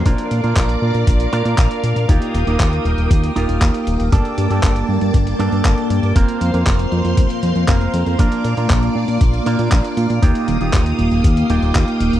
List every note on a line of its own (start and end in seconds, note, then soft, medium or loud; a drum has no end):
0.05 0.15 A#1 loud
0.05 0.41 A#3 medium
0.05 0.41 D4 medium
0.05 0.41 F4 medium
0.05 2.07 A#4 medium
0.05 0.41 A#4 loud
0.05 2.07 D5 medium
0.05 4.08 F5 medium
0.05 2.07 D6 medium
0.05 kick loud
0.05 closed hi-hat medium
0.18 closed hi-hat soft
0.31 0.41 A#2 loud
0.31 closed hi-hat medium
0.44 0.54 A#2 medium
0.44 1.30 A#3 medium
0.44 1.30 D4 medium
0.44 1.30 F4 medium
0.44 1.30 A#4 medium
0.44 closed hi-hat soft
0.56 0.76 A#1 medium
0.56 kick loud
0.56 clap loud
0.56 closed hi-hat medium
0.69 closed hi-hat soft
0.82 0.92 A#2 medium
0.95 1.04 A#2 medium
0.95 closed hi-hat soft
1.07 1.27 A#1 medium
1.07 kick loud
1.07 closed hi-hat medium
1.20 closed hi-hat soft
1.33 1.43 A#2 medium
1.33 2.06 A#3 medium
1.33 2.06 D4 medium
1.33 2.06 F4 medium
1.33 2.06 A#4 loud
1.33 closed hi-hat medium
1.45 1.55 A#2 medium
1.45 closed hi-hat soft
1.58 1.68 A#1 medium
1.58 kick loud
1.58 clap loud
1.58 closed hi-hat medium
1.71 closed hi-hat soft
1.84 1.93 A#2 loud
1.84 closed hi-hat medium
1.96 2.06 A#2 medium
1.96 closed hi-hat soft
2.09 2.19 D#2 loud
2.09 2.44 A#3 loud
2.09 2.44 D#4 medium
2.09 2.44 F4 medium
2.09 2.44 G4 loud
2.09 4.10 A#4 medium
2.09 6.12 G5 medium
2.09 4.10 D#6 medium
2.09 kick loud
2.09 closed hi-hat medium
2.22 closed hi-hat soft
2.34 2.44 D#1 loud
2.34 closed hi-hat medium
2.47 2.57 D#1 medium
2.47 3.33 A#3 medium
2.47 3.33 D#4 medium
2.47 3.33 F4 medium
2.47 3.33 G4 medium
2.47 closed hi-hat soft
2.60 2.80 D#2 medium
2.60 kick loud
2.60 clap loud
2.60 closed hi-hat medium
2.73 closed hi-hat soft
2.85 2.95 D#1 loud
2.85 closed hi-hat soft
2.98 3.08 D#1 medium
2.98 closed hi-hat soft
3.11 3.30 D#2 medium
3.11 kick loud
3.11 closed hi-hat medium
3.24 closed hi-hat soft
3.36 3.46 D#1 medium
3.36 4.09 A#3 medium
3.36 4.09 D#4 medium
3.36 4.09 F4 medium
3.36 4.09 G4 loud
3.36 closed hi-hat medium
3.49 3.59 D#1 medium
3.49 closed hi-hat soft
3.62 3.71 D#2 medium
3.62 kick loud
3.62 clap loud
3.62 closed hi-hat medium
3.74 closed hi-hat soft
3.87 3.97 D#1 loud
3.87 closed hi-hat medium
4.00 4.10 D#1 medium
4.00 closed hi-hat soft
4.12 4.22 G1 loud
4.12 6.14 A#3 medium
4.12 4.48 A#3 medium
4.12 4.48 D4 medium
4.12 4.48 G4 medium
4.12 4.48 A4 loud
4.12 6.14 A5 medium
4.12 6.14 D6 medium
4.12 kick loud
4.12 closed hi-hat medium
4.25 closed hi-hat soft
4.38 4.48 G2 loud
4.38 closed hi-hat medium
4.50 4.60 G2 medium
4.50 5.36 A#3 medium
4.50 5.36 D4 medium
4.50 5.36 G4 medium
4.50 5.37 A4 medium
4.50 closed hi-hat soft
4.63 4.83 G1 medium
4.63 kick loud
4.63 clap loud
4.63 closed hi-hat medium
4.76 closed hi-hat soft
4.89 4.99 G2 loud
5.01 5.11 G2 medium
5.01 closed hi-hat soft
5.14 5.34 G1 medium
5.14 kick loud
5.14 closed hi-hat medium
5.27 closed hi-hat soft
5.39 5.49 G2 medium
5.39 6.13 A#3 medium
5.39 6.13 D4 medium
5.39 6.13 G4 medium
5.39 6.13 A4 loud
5.39 closed hi-hat medium
5.52 5.62 G2 medium
5.52 closed hi-hat soft
5.65 5.75 G1 medium
5.65 kick loud
5.65 clap loud
5.65 closed hi-hat medium
5.78 closed hi-hat soft
5.90 6.00 G2 loud
5.90 closed hi-hat medium
6.03 6.13 G2 medium
6.03 closed hi-hat soft
6.16 6.26 F1 loud
6.16 6.51 A#3 loud
6.16 12.20 A#3 medium
6.16 6.51 C4 medium
6.16 6.51 F4 medium
6.16 6.51 A#4 loud
6.16 8.17 C5 medium
6.16 12.20 F5 medium
6.16 8.17 C6 medium
6.16 kick loud
6.16 closed hi-hat medium
6.29 closed hi-hat soft
6.41 6.51 F2 loud
6.41 closed hi-hat medium
6.54 6.64 F2 medium
6.54 7.40 A#3 medium
6.54 7.40 C4 medium
6.54 7.40 F4 medium
6.54 7.40 A#4 medium
6.54 closed hi-hat soft
6.67 6.86 F1 medium
6.67 kick loud
6.67 clap loud
6.67 closed hi-hat medium
6.79 closed hi-hat soft
6.92 7.02 F2 loud
6.92 closed hi-hat soft
7.05 7.15 F2 medium
7.05 closed hi-hat soft
7.17 7.27 F1 loud
7.17 kick loud
7.17 closed hi-hat medium
7.30 closed hi-hat soft
7.43 7.53 F2 loud
7.43 closed hi-hat medium
7.56 7.65 F2 loud
7.56 closed hi-hat soft
7.68 7.88 F1 medium
7.68 8.16 A#3 medium
7.68 8.16 C4 medium
7.68 8.16 F4 medium
7.68 8.16 A#4 loud
7.68 kick loud
7.68 clap loud
7.68 closed hi-hat medium
7.81 closed hi-hat soft
7.94 8.04 F2 medium
7.94 closed hi-hat medium
8.06 8.16 F2 medium
8.06 closed hi-hat soft
8.19 8.29 A#1 loud
8.19 8.54 A#3 loud
8.19 8.54 D4 medium
8.19 8.54 F4 medium
8.19 8.54 A#4 loud
8.19 10.21 D5 medium
8.19 10.21 D6 medium
8.19 kick loud
8.19 closed hi-hat medium
8.32 closed hi-hat soft
8.44 8.54 A#2 loud
8.44 closed hi-hat medium
8.57 8.67 A#2 medium
8.57 9.43 A#3 medium
8.57 9.43 D4 medium
8.57 9.43 F4 medium
8.57 9.43 A#4 medium
8.57 closed hi-hat soft
8.70 8.90 A#1 medium
8.70 kick loud
8.70 clap loud
8.70 closed hi-hat medium
8.83 closed hi-hat soft
8.96 9.05 A#2 loud
9.08 9.18 A#2 medium
9.08 closed hi-hat soft
9.21 9.41 A#1 medium
9.21 kick loud
9.21 closed hi-hat medium
9.34 closed hi-hat soft
9.46 9.56 A#2 medium
9.46 10.20 A#3 medium
9.46 10.20 D4 medium
9.46 10.20 F4 medium
9.46 10.20 A#4 loud
9.46 closed hi-hat medium
9.59 9.69 A#2 medium
9.59 closed hi-hat soft
9.72 9.82 A#1 medium
9.72 kick loud
9.72 clap loud
9.72 closed hi-hat medium
9.84 closed hi-hat soft
9.97 10.07 A#2 loud
9.97 closed hi-hat medium
10.10 10.20 A#2 medium
10.10 closed hi-hat soft
10.22 10.32 D#2 loud
10.22 10.58 A#3 loud
10.22 10.58 D#4 medium
10.22 10.58 F4 medium
10.22 10.58 G4 loud
10.22 12.20 G5 medium
10.22 12.20 D#6 medium
10.22 kick loud
10.22 closed hi-hat medium
10.35 closed hi-hat soft
10.48 10.58 D#1 loud
10.48 closed hi-hat medium
10.61 10.71 D#1 medium
10.61 11.47 A#3 medium
10.61 11.47 D#4 medium
10.61 11.47 F4 medium
10.61 11.47 G4 medium
10.61 closed hi-hat soft
10.73 10.93 D#2 medium
10.73 kick loud
10.73 clap loud
10.73 closed hi-hat medium
10.86 closed hi-hat soft
10.99 11.09 D#1 loud
10.99 closed hi-hat soft
11.12 11.21 D#1 medium
11.12 closed hi-hat soft
11.24 11.44 D#2 medium
11.24 kick loud
11.24 closed hi-hat medium
11.37 closed hi-hat soft
11.50 11.60 D#1 medium
11.50 12.20 A#3 medium
11.50 12.20 D#4 medium
11.50 12.20 F4 medium
11.50 12.20 G4 loud
11.50 closed hi-hat medium
11.62 11.72 D#1 medium
11.62 closed hi-hat soft
11.75 11.85 D#2 medium
11.75 kick loud
11.75 clap loud
11.75 closed hi-hat medium
11.88 closed hi-hat soft
12.00 12.10 D#1 loud
12.00 closed hi-hat medium
12.13 12.20 D#1 medium
12.13 closed hi-hat soft